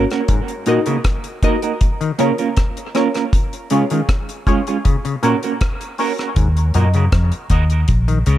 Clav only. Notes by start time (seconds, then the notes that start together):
0.29 G#2
0.67 A#2
0.86 C#3
2.01 D#3
2.19 C#3
3.71 C#3
3.91 D#3
4.85 C#3
5.05 C#3
5.23 A#2
6.36 G#2
6.75 A#2
6.95 C#3
8.08 D#3
8.27 C#3